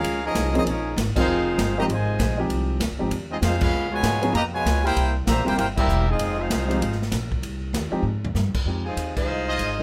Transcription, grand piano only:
X:1
M:4/4
L:1/8
Q:"Swing" 1/4=195
K:Fm
V:1 name="Grand piano"
z3 [F,B,CDA] z3 [F,A,CEB]- | [F,A,CEB]2 z [F,A,CEG] z3 [F,A,CEG]- | [F,A,CEG]2 z [F,A,CEG] z4 | z3 [F,_CDEA] z4 |
z3 [G,B,C=EG] z4 | z3 [F,A,CEG] z4 | z3 [F,A,CEG] z4 | [F,A,CEG] z6 [F,A,CEB] |]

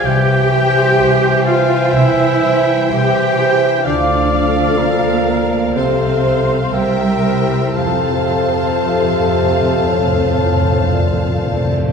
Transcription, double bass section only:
X:1
M:4/4
L:1/8
Q:1/4=62
K:F
V:1 name="Double bass section" clef=bass
C,,2 C,,2 C,,2 C,,2 | D,,4 C,,2 C,,2 | F,,8 |]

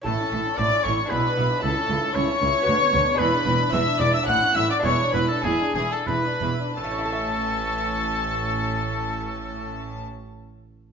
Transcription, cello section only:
X:1
M:3/4
L:1/8
Q:1/4=104
K:A
V:1 name="Cello section" clef=bass
A,, A,, A,, A,, B,, B,, | C,, C,, C,, C,, D,, D,, | E,, E,, E,, E,, A,, A,, | E,, E,, E,, E,, E,, E,, |
A,,6- | A,,6 |]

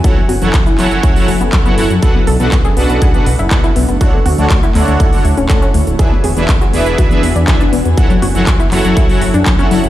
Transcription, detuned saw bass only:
X:1
M:4/4
L:1/16
Q:1/4=121
K:F#m
V:1 name="Detuned saw bass" clef=bass
z2 F,,, F,,, z2 F,,, F,,, z2 F,,, F,,, z2 F,,, F,, | z2 B,,, B,,, z2 B,,, B,,, z2 B,,, F,,, z2 B,,, F,,, | z2 D,, D,, z2 D,, D,, z2 D,, D,,, z2 D,, D,,, | z2 E,,, E,,, z2 E,,, E,,, z2 E,,, E,, z2 E,,, E,, |
z2 F,,, F,,, z2 F,,, F,,, z2 F,,, F,, z2 F,,, F,,, |]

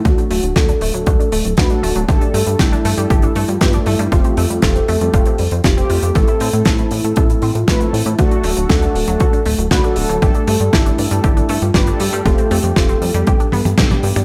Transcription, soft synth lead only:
X:1
M:4/4
L:1/16
Q:1/4=118
K:Gmix
V:1 name="Soft synth lead"
^F2 F2 A8 F4 | A4 E4 E3 F3 E2 | F2 F2 A8 G4 | A4 E4 E3 F3 E2 |
^F2 F2 A8 F2 A2- | A4 E4 E3 F3 G2 | A2 G2 A8 z4 |]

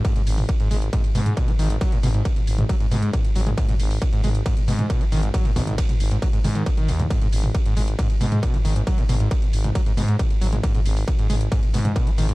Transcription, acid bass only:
X:1
M:4/4
L:1/16
Q:1/4=136
K:G#m
V:1 name="Acid bass" clef=bass
G,, G,, z3 G,, G, z G,, z B,, G,, B,, F, D, G,, | F, G,, B,, G,, z3 G,, F, G,, B,, G,, z2 F, G, | G,, G,, z3 G,, G, z G,, z B,, G,, B,, F, D, G,, | F, G,, B,, G,, z3 G,, F, G,, D, D, B,, D, G,, G,, |
G,, G,, z3 G,, G, z G,, z B,, G,, B,, F, D, G,, | F, G,, B,, G,, z3 G,, F, G,, B,, G,, z2 F, G, | G,, G,, z3 G,, G, z G,, z B,, G,, B,, F, D, G,, |]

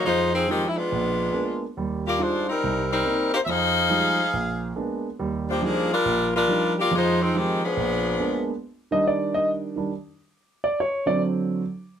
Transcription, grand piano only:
X:1
M:4/4
L:1/8
Q:"Swing" 1/4=140
K:Eb
V:1 name="Grand piano"
z8 | z8 | z8 | z8 |
z8 | z e d e z4 | z d _d =d z4 |]
V:2 name="Grand piano" clef=bass
F,,2 [F,A,E] z B,,,2 [A,B,_CD] z | [E,,G,]2 [G,DEF] z C,,2 [B,CE] z | F,,2 [F,G,A,E] z B,,,2 [A,B,_CD] z | [E,,G,]2 [F,G,DE] z B,,,2 [F,G,DE] z |
[F,,F,]2 [F,A,E] z B,,,2 [A,B,_CD] z | z [E,G,D]4 [E,G,D] z2 | z3 [D,^F,C]3 z2 |]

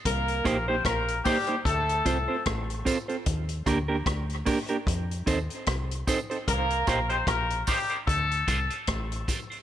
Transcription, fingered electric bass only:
X:1
M:4/4
L:1/16
Q:"Swing 16ths" 1/4=75
K:Cdor
V:1 name="Fingered electric bass" clef=bass
C,,2 B,,,2 B,,,2 z2 D,,2 C,, z A,,,2 z2 | E,,2 D,,2 D,,2 z2 F,,2 E,, z C,,2 z2 | C,,2 B,,,2 B,,,2 z2 D,,2 C,, z A,,,2 z2 |]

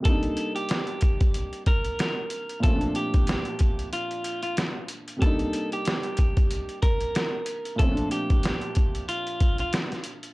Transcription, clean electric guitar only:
X:1
M:4/4
L:1/16
Q:"Swing 16ths" 1/4=93
K:Cdor
V:1 name="Clean electric guitar"
A3 G6- G B6 | A2 G6 F3 F z4 | A3 G6- G B6 | A2 G6 F3 F z4 |]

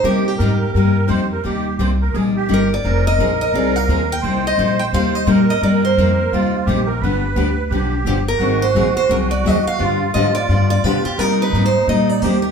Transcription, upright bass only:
X:1
M:4/4
L:1/8
Q:"Swing" 1/4=172
K:Cm
V:1 name="Upright bass" clef=bass
C,2 A,,2 G,,2 F,,2 | E,,2 C,,2 B,,,2 G,,,2 | F,,,2 B,,,2 C,,2 E,,2 | C,,2 B,,,2 E,,2 B,,2 |
G,,2 F,,2 E,,2 B,,,2 | G,,,2 D,,2 =B,,,2 G,,,2 | A,,,2 B,,, z C,,2 E,, z | G,,2 A,,2 G,,2 =B,, z |
C,2 A,,2 B,,2 E,,2 |]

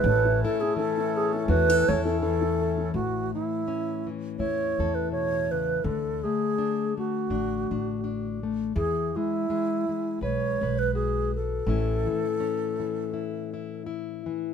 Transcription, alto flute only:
X:1
M:4/4
L:1/16
Q:"Swing" 1/4=82
K:A
V:1 name="Alto flute"
B2 A G A2 G A B2 c A A4 | F2 E6 c3 B c2 B2 | A2 G4 F8 z2 | G2 E6 c3 B G2 A2- |
A12 z4 |]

